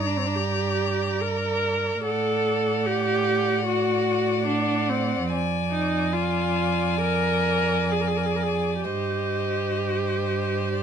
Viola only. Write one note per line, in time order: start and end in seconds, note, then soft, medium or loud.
0.07 0.18 D4 soft
0.17 0.28 C4 soft
0.26 0.37 D4 soft
0.36 1.23 G4 soft
1.21 2.04 A#4 medium
2.05 2.87 A4 medium
2.86 3.66 G4 medium
3.67 4.46 F#4 medium
4.47 4.91 D4 medium
4.90 5.31 C4 soft
5.71 6.14 D#4 medium
6.12 7.01 F4 soft
7.02 7.93 A#4 medium
7.91 8.02 G#4 soft
8.01 8.09 A#4 soft
8.08 8.18 G#4 soft
8.17 8.27 A#4 soft
8.26 8.37 G#4 soft
8.36 8.45 A#4 soft
8.43 8.83 G#4 soft
8.84 10.83 G4 soft